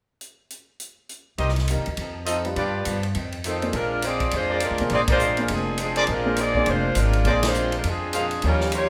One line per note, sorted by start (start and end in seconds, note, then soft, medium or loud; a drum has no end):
0.21 closed hi-hat soft
0.50 closed hi-hat medium
0.80 closed hi-hat medium
1.09 closed hi-hat soft
1.38 1.75 C2 medium
1.38 1.58 C3 soft
1.38 1.58 G3 soft
1.38 1.59 A#3 soft
1.38 1.59 D#4 medium
1.38 1.51 G4 medium
1.38 1.51 A#4 medium
1.38 1.51 C5 medium
1.38 1.51 D#5 medium
1.38 ride soft
1.48 snare soft
1.56 snare soft
1.56 ride soft
1.68 1.87 C3 medium
1.68 1.88 G3 medium
1.68 1.88 A#3 medium
1.68 1.89 D#4 medium
1.68 hi-hat pedal medium
1.68 ride medium
1.77 1.87 D#2 medium
1.86 1.97 E2 medium
1.86 ride soft
1.97 2.53 F2 medium
1.97 2.17 F3 soft
1.97 2.18 C4 soft
1.97 2.18 D#4 soft
1.97 ride medium
2.01 2.18 A4 soft
2.26 2.46 F3 medium
2.26 2.47 C4 medium
2.26 2.47 D#4 medium
2.26 2.38 F4 medium
2.26 2.38 A4 medium
2.26 2.47 A4 medium
2.26 2.39 C5 medium
2.26 2.39 D#5 medium
2.26 hi-hat pedal medium
2.26 ride medium
2.45 2.55 G3 soft
2.45 2.55 D4 soft
2.45 2.55 F4 soft
2.45 2.56 B4 medium
2.45 ride soft
2.56 2.83 G2 medium
2.56 2.75 G2 soft
2.56 2.76 F3 soft
2.56 2.76 B3 soft
2.56 2.77 D4 medium
2.56 3.00 F4 medium
2.56 3.00 G4 medium
2.56 3.00 B4 medium
2.56 3.00 D5 medium
2.56 ride soft
2.85 3.13 G2 medium
2.85 3.05 G2 medium
2.85 3.05 F3 medium
2.85 3.06 B3 medium
2.85 3.06 D4 medium
2.85 hi-hat pedal medium
2.85 ride medium
3.03 ride soft
3.15 3.34 F2 soft
3.15 3.71 F2 medium
3.15 3.34 D#3 soft
3.15 3.35 A3 soft
3.15 3.35 C4 soft
3.15 ride soft
3.32 ride soft
3.44 3.63 F2 medium
3.44 3.64 D#3 medium
3.44 3.73 F3 medium
3.44 3.64 A3 medium
3.44 3.64 C4 medium
3.44 3.73 C4 medium
3.44 3.73 D#4 medium
3.44 3.73 A4 medium
3.44 hi-hat pedal medium
3.44 ride medium
3.62 3.73 A#3 medium
3.62 3.73 D4 soft
3.62 3.73 G#4 soft
3.62 3.73 C5 medium
3.62 ride soft
3.73 4.29 A#1 medium
3.73 3.92 A#2 soft
3.73 3.93 G#3 soft
3.73 4.04 G#3 medium
3.73 3.94 C4 soft
3.73 4.04 D4 medium
3.73 3.94 D4 soft
3.73 4.04 F4 medium
3.73 4.04 A#4 loud
3.73 ride medium
4.02 4.22 A#2 medium
4.02 4.22 G#3 medium
4.02 4.23 C4 medium
4.02 4.33 C4 medium
4.02 4.23 D4 medium
4.02 4.33 F4 medium
4.02 4.33 G#4 medium
4.02 4.33 D5 medium
4.02 hi-hat pedal soft
4.02 ride medium
4.20 kick medium
4.20 ride soft
4.31 4.69 F2 medium
4.31 4.51 A#2 soft
4.31 4.52 G#3 soft
4.31 4.63 G#3 medium
4.31 4.52 C4 soft
4.31 4.53 D4 soft
4.31 ride medium
4.35 4.63 D4 medium
4.35 4.63 F4 medium
4.35 4.63 C5 medium
4.50 4.88 G#4 medium
4.50 4.88 A#4 medium
4.50 4.88 C5 medium
4.50 4.88 D5 medium
4.60 4.81 A#2 medium
4.60 4.81 G#3 medium
4.60 4.81 C4 medium
4.60 4.82 D4 medium
4.60 4.90 D4 medium
4.60 4.90 A#4 medium
4.60 hi-hat pedal medium
4.60 ride medium
4.64 4.90 G#3 medium
4.64 4.90 F4 medium
4.71 4.80 D2 medium
4.78 4.90 B1 medium
4.78 5.19 A#3 medium
4.78 5.18 D4 soft
4.78 5.18 G#4 medium
4.78 5.19 C5 medium
4.78 ride soft
4.90 5.46 A#1 medium
4.90 5.10 A#2 soft
4.90 5.10 G#3 soft
4.90 5.11 C4 soft
4.90 5.01 C4 medium
4.90 5.11 D4 soft
4.90 5.01 G#4 medium
4.90 5.01 D5 medium
4.90 ride medium
4.94 5.01 F4 medium
5.08 5.37 G#3 medium
5.08 5.37 D4 medium
5.08 5.37 F4 medium
5.08 5.47 G#4 medium
5.08 5.47 A#4 medium
5.08 5.47 C5 medium
5.08 5.37 C5 medium
5.08 5.47 D5 medium
5.08 kick medium
5.08 ride medium
5.19 5.39 A#2 medium
5.19 5.39 G#3 medium
5.19 5.40 C4 medium
5.19 5.40 D4 medium
5.19 hi-hat pedal medium
5.37 5.51 G#3 medium
5.37 5.77 A#3 medium
5.37 5.77 D4 medium
5.37 5.51 D4 medium
5.37 5.51 F4 medium
5.37 5.77 G#4 medium
5.37 5.51 A#4 medium
5.37 5.77 C5 medium
5.37 ride soft
5.48 6.05 F1 medium
5.48 5.68 A#2 soft
5.48 5.69 G#3 soft
5.48 5.69 C4 soft
5.48 5.70 D4 soft
5.48 ride medium
5.53 5.80 F3 medium
5.53 5.80 C4 medium
5.53 5.81 D4 medium
5.53 5.80 G#4 medium
5.78 5.98 A#2 medium
5.78 5.98 G#3 medium
5.78 5.98 C4 medium
5.78 5.98 D4 medium
5.78 hi-hat pedal soft
5.78 ride medium
5.82 6.08 F3 medium
5.82 6.08 C4 medium
5.82 6.08 D4 medium
5.82 6.08 G#4 medium
5.96 6.04 G#4 medium
5.96 6.04 A#4 medium
5.96 6.04 C5 medium
5.96 6.04 D5 loud
5.96 ride soft
6.07 6.64 A#1 medium
6.07 6.27 A#2 soft
6.07 6.27 G#3 soft
6.07 6.27 C4 medium
6.07 6.28 D4 soft
6.07 6.39 A#4 medium
6.07 ride soft
6.11 6.39 G#3 medium
6.11 6.39 D4 medium
6.11 6.39 F4 medium
6.26 6.53 A#3 medium
6.26 6.54 D4 soft
6.26 6.54 G#4 medium
6.26 6.54 C5 medium
6.37 6.56 A#2 medium
6.37 6.57 G#3 medium
6.37 6.57 C4 medium
6.37 6.68 C4 medium
6.37 6.57 D4 medium
6.37 6.68 F4 medium
6.37 6.68 G#4 medium
6.37 6.68 D5 loud
6.37 hi-hat pedal medium
6.37 ride medium
6.55 6.94 A#3 medium
6.55 6.94 D4 medium
6.55 6.94 G#4 medium
6.55 6.94 D5 medium
6.55 kick soft
6.66 6.94 F1 medium
6.66 6.86 A#2 soft
6.66 6.86 G#3 soft
6.66 6.98 G#3 medium
6.66 6.87 C4 soft
6.66 6.87 D4 soft
6.66 6.97 F4 medium
6.66 6.98 C5 medium
6.66 ride medium
6.70 6.98 D4 medium
6.95 7.23 G#1 medium
6.95 7.15 A#2 medium
6.95 7.16 G#3 medium
6.95 7.16 C4 medium
6.95 7.16 D4 medium
6.95 hi-hat pedal medium
6.95 ride medium
7.00 7.28 G#3 medium
7.00 7.27 D4 medium
7.00 7.27 F4 medium
7.00 7.27 A#4 medium
7.13 ride soft
7.24 7.81 A#1 medium
7.24 7.44 A#2 soft
7.24 7.45 G#3 soft
7.24 7.70 A#3 soft
7.24 7.45 C4 soft
7.24 7.70 D4 soft
7.24 7.38 G#4 medium
7.24 7.70 G#4 soft
7.24 7.38 A#4 medium
7.24 7.38 C5 medium
7.24 7.70 C5 medium
7.24 7.38 D5 medium
7.24 ride medium
7.28 7.45 C4 medium
7.28 7.46 D4 soft
7.28 7.45 F4 medium
7.28 7.45 G#4 medium
7.28 7.45 D5 medium
7.43 snare medium
7.43 ride medium
7.47 7.75 G#3 medium
7.47 7.74 D4 medium
7.47 7.75 F4 medium
7.47 7.75 C5 medium
7.54 7.74 A#2 medium
7.54 7.74 G#3 medium
7.54 7.75 C4 medium
7.54 7.75 D4 medium
7.54 hi-hat pedal medium
7.72 ride soft
7.77 7.86 G#3 medium
7.77 7.86 D4 medium
7.77 7.86 F4 medium
7.77 7.86 A#4 medium
7.84 8.40 F2 medium
7.84 8.03 A#2 soft
7.84 8.04 G#3 soft
7.84 8.04 C4 soft
7.84 8.05 D4 soft
7.84 ride medium
7.88 8.16 F3 medium
7.88 8.16 C4 medium
7.88 8.16 D4 medium
7.88 8.16 G#4 medium
8.13 8.32 A#2 medium
8.13 8.33 G#3 medium
8.13 8.33 C4 medium
8.13 8.34 D4 medium
8.13 8.25 G#4 medium
8.13 8.26 A#4 medium
8.13 8.25 C5 medium
8.13 8.26 F5 medium
8.13 hi-hat pedal medium
8.13 ride medium
8.17 8.43 F3 medium
8.17 8.43 C4 medium
8.17 8.43 D4 medium
8.17 8.43 G#4 medium
8.31 ride soft
8.42 8.89 D#2 medium
8.42 8.62 D#3 soft
8.42 8.87 F3 soft
8.42 8.63 G3 soft
8.42 8.87 C#4 soft
8.42 8.63 C#4 soft
8.42 8.87 D#4 soft
8.42 8.63 F4 soft
8.42 8.87 G4 medium
8.42 ride medium
8.46 8.72 G3 medium
8.46 8.72 C#4 medium
8.46 8.72 F4 medium
8.46 8.72 A#4 medium
8.61 snare soft
8.72 8.89 D#3 medium
8.72 8.89 G3 medium
8.72 8.89 A#3 medium
8.72 8.89 C#4 medium
8.72 8.89 F4 medium
8.72 8.89 G4 medium
8.72 8.89 C#5 medium
8.72 hi-hat pedal medium
8.72 ride medium